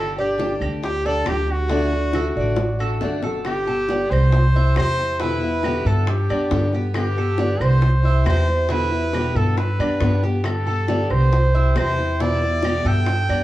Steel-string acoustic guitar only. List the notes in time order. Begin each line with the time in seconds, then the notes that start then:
Already playing: D3 G3 D4 G4
0.16 G3 D4 G4
0.38 D3 G3 D4 G4
0.83 muted steel-string acoustic guitar stroke
1.04 G3 D4 G4
1.24 D3 G3 D4 G4
1.47 G3 D4 G4
1.68 D3 A3 D4 F#4
1.91 A3 D4 F#4
2.14 D3 A3 D4 F#4
2.56 muted steel-string acoustic guitar stroke
2.79 A3 D4 F#4
3.02 D3 A3 D4 F#4
3.23 A3 D4 F#4
3.45 D3 G3 B3 G4
3.66 G3 B3 G4
3.89 D3 G3 B3 G4
4.33 muted steel-string acoustic guitar stroke
4.56 G3 C4 E4
4.77 C3 E3 G3 C4 E4
4.98 G3 C4 E4
5.20 B2 D3 G3 B3 E4
5.43 G3 B3 E4
5.64 B2 D3 G3 B3 E4
6.07 muted steel-string acoustic guitar stroke
6.29 G3 B3 G4
6.51 D3 G3 B3 G4
6.72 G3 B3 G4
6.94 D3 G3 B3 G4
7.16 G3 B3 G4
7.37 D3 G3 B3 G4
7.81 muted steel-string acoustic guitar stroke
8.03 G3 C4 E4
8.24 C3 E3 G3 C4 E4
8.47 G3 C4 E4
8.69 B2 D3 G3 B3 E4
8.90 G3 B3 E4
9.13 B2 D3 G3 B3 E4
9.57 muted steel-string acoustic guitar stroke
9.79 G3 B3 G4
10.00 D3 G3 B3 G4
10.23 G3 B3 G4
10.44 D3 G3 B3 G4
10.67 G3 B3 G4
10.88 D3 G3 B3 G4
11.32 muted steel-string acoustic guitar stroke
11.55 G3 C4 E4
11.75 C3 E3 G3 C4 E4
11.98 G3 C4 E4
12.19 B2 D3 G3 B3 E4
12.42 G3 B3 E4
12.63 B2 D3 G3 B3 E4
13.08 muted steel-string acoustic guitar stroke
13.29 G3 B3 G4